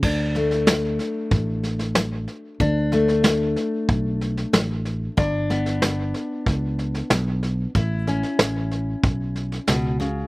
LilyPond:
<<
  \new Staff \with { instrumentName = "Steel-string acoustic guitar" } { \clef bass \time 4/4 \key d \major \tempo 4 = 93 << { d'8 a2.~ a8 | d'8 a2.~ a8 | d'8 b2.~ b8 | e'8 cis'2.~ cis'8 | } \\ { d4 fis4 a,4 fis4 | d4 fis4 a,4 fis4 | g,4 g4 r4 g4 | a,4 e4 a,4 b,8 cis8 | } >> }
  \new Staff \with { instrumentName = "Fingered electric bass" } { \clef bass \time 4/4 \key d \major d,2 a,,2 | d,2 b,,4 a,,4 | g,,2 cis,4 b,,4 | a,,4 a,,4 b,,4 cis,4 | }
  \new DrumStaff \with { instrumentName = "Drums" } \drummode { \time 4/4 <cymc bd sn>8 sn16 sn16 <hhp sn>8 sn8 <bd sn>8 sn16 sn16 <hhp sn>8 sn8 | <bd sn>8 sn16 sn16 <hhp sn>8 sn8 <bd sn>8 sn16 sn16 <hhp sn>8 sn8 | <bd sn>8 sn16 sn16 <hhp sn>8 sn8 <bd sn>8 sn16 sn16 <hhp sn>8 sn8 | <bd sn>8 sn16 sn16 <hhp sn>8 sn8 <bd sn>8 sn16 sn16 <hhp sn>8 sn8 | }
>>